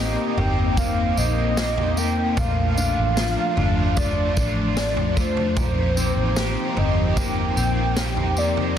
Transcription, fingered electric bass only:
Already playing: A1
0.37 G1
1.17 A#1
2.37 A#1
2.97 A1
3.57 G1
4.37 A1
5.57 A#1
6.16 A1
6.76 G1
7.57 A#1

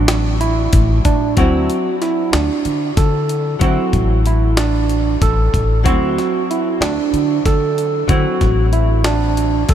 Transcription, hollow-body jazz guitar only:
Already playing: F#3 C4 E4
1.37 F#3 C4 E4
3.59 F#3 C4 E4
5.84 F#3 C4 E4
8.08 F#3 C4 E4

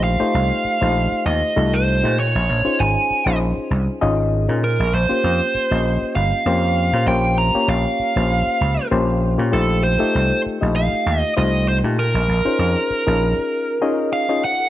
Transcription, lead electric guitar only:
0.04 F5
1.26 D#5
1.74 C5
2.19 C#5
2.80 G#5
4.64 A#4
4.94 C5
6.15 F5
7.08 G5
7.38 A#5
7.70 F5
9.53 A4
9.83 C5
10.76 F5
11.20 D#5
11.37 D#5
11.68 C5
11.99 A#4
14.13 F5
14.44 F#5

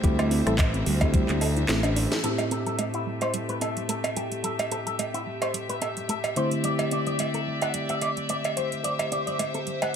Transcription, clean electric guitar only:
2.24 A4
2.51 A4
2.67 A4
2.94 E4
3.22 C5
3.49 B4
3.61 A4
3.89 A4
4.16 G4
4.44 A4
4.71 A4
4.86 A4
5.14 E4
5.42 C5
5.69 B4
5.82 A4
6.09 A4
6.37 C5
6.64 D5
6.92 D5
7.07 D5
7.34 A4
7.62 F#5
7.89 E5
8.02 D5
8.29 D5
8.57 C5
8.84 D5
9.12 D5
9.27 D5
9.54 A4
9.82 F#5

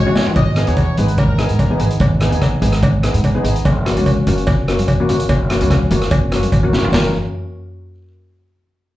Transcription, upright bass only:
0.36 G#1
0.68 D#2
0.98 G#1
1.50 G#2
1.80 G#1
2.00 G#1
2.31 D#2
2.62 G#1
3.14 G#2
3.44 G#1
3.65 F#1
3.97 C#2
4.27 F#1
4.79 F#2
5.09 F#1
5.29 F#1
5.61 C#2
5.91 F#1
6.44 F#2
6.52 G#1
6.74 F#1
6.94 F#1

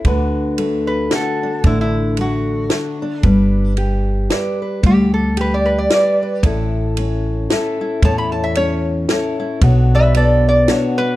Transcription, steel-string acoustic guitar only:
0.05 D3 D4 F#4 B4
0.58 A3
1.12 D4 F#4
1.43 D4
1.65 D3 D4
2.18 A3
2.72 D4
3.02 D4
3.24 G3 B4 D5
3.78 G4
4.31 B4 D5
4.62 B4
4.84 G3
5.37 G4
5.92 B4
6.23 B4
6.45 A2 E4 A4
6.98 C#4
7.51 E4 A4 E5
7.81 E4
8.03 A2 E4 A4 C#5
8.57 C#4
9.10 E4 A4 C#5
9.40 E4
9.62 B2 D4 F#4 C#5
10.15 B3
10.69 D4 F#4 C#5
10.99 D4

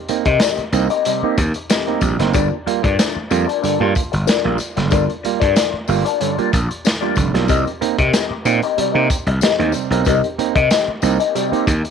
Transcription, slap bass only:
0.09 muted slap bass stroke
0.26 C3
0.58 muted slap bass stroke
0.72 C2
1.22 muted slap bass stroke
1.38 D#2
2.01 A#1
2.19 F#1
2.35 G1
2.67 muted slap bass stroke
2.84 G2
3.16 muted slap bass stroke
3.31 F2
3.64 muted slap bass stroke
3.80 G2
4.13 G1
4.28 muted slap bass stroke
4.45 A#1
4.77 F#1
4.92 G1
5.25 muted slap bass stroke
5.42 G2
5.73 muted slap bass stroke
5.89 G1
6.38 muted slap bass stroke
6.53 A#1
7.17 F1
7.34 B1
7.50 C2
7.82 muted slap bass stroke
7.98 C3
8.31 muted slap bass stroke
8.45 A#2
8.78 muted slap bass stroke
8.95 C3
9.26 C2
9.42 muted slap bass stroke
9.59 D#2
9.90 B1
10.06 C2
10.38 muted slap bass stroke
10.56 C3
10.88 muted slap bass stroke
11.02 C2
11.52 muted slap bass stroke
11.67 D#2

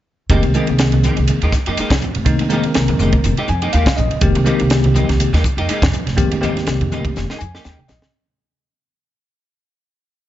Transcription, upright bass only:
0.30 F1
0.43 C2
0.69 C2
1.18 C2
1.42 D#2
1.67 F2
1.79 muted upright bass stroke
1.90 F2
2.16 F1
2.76 C2
2.89 F2
2.99 F1
3.24 F1
3.38 muted upright bass stroke
3.49 F2
3.74 D#2
3.87 muted upright bass stroke
3.98 A#1
4.11 muted upright bass stroke
4.21 F1
4.36 C2
4.61 C2
5.09 C2
5.33 D#2
5.57 F2
5.69 muted upright bass stroke
5.82 F2
6.08 F1
6.67 C2
6.81 F2
6.93 F1
7.16 F1
7.41 F2
7.65 D#2
7.90 A#1

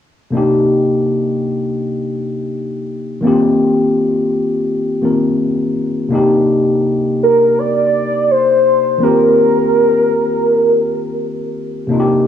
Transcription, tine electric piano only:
0.31 C3 A#3 D4
0.36 D#4 G4
3.20 D#3 A#3 C4
3.25 F4 G4
5.02 D#3 A#3 C4 F4 A#4
6.09 C3 A#3 D4
6.13 D#4 G4
8.98 D#3 A#3 C4
9.03 F4 G4
11.87 C3 A#3 D4
11.92 D#4 F4
12.00 G4

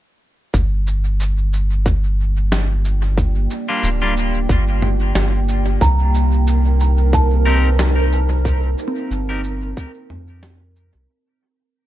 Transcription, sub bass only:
0.54 G1
3.83 D1
4.49 G1
5.15 G1
5.81 C2
9.11 G1
10.10 F2
10.95 C2

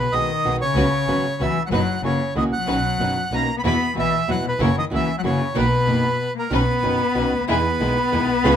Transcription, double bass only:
0.12 B1
0.44 B1
0.75 C#2
1.07 G#1
1.40 C#2
1.72 F#1
2.03 F#1
2.35 C#2
2.51 A1
2.65 B1
2.99 F#1
3.30 B1
3.65 E2
3.97 B1
4.28 E2
4.59 F#1
4.92 C#2
5.24 F#1
5.56 B1
5.87 F#1
6.52 B1
6.84 F#1
7.16 B1
7.32 D2
7.48 E2
7.80 B1
8.12 E2
8.27 B1
8.42 C#2

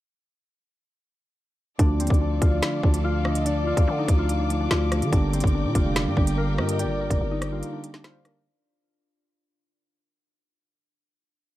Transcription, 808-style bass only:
1.79 D2
2.00 D#2
2.10 D2
2.42 D2
2.83 D2
3.77 D2
3.88 D3
4.08 D2
4.71 D2
5.02 D3
5.13 G1
5.44 G1
5.65 A#2
5.75 F1
6.06 G2
6.17 G1
6.58 G2
6.85 G1
7.10 F1
7.21 G1

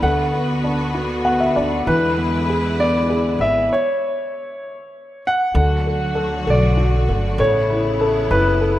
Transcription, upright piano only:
0.02 D3
0.34 B3
0.64 D4
0.94 F#4
1.25 B3 F#5
1.40 E5
1.56 D4 D5
1.87 E3
2.18 B3
2.49 G#4
2.80 B3
3.09 G#4
3.40 B3
5.54 D3
5.86 A3
6.15 A4
6.46 A3
6.77 F#4
7.08 A3
7.39 A3
7.70 E4
8.01 A4
8.31 E4
8.61 A4

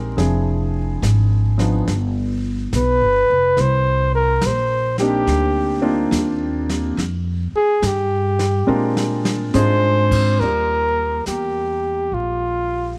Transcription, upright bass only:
Already playing: A#1
0.18 F1
1.02 G#1
1.88 G1
2.73 B1
3.02 G1
3.30 F1
3.58 C2
4.44 A#1
5.27 D2
6.11 D#2
6.97 F2
7.53 muted upright bass stroke
7.82 G2
8.68 A#2
9.54 G#2
10.40 D#2
11.26 E2
12.12 A#1

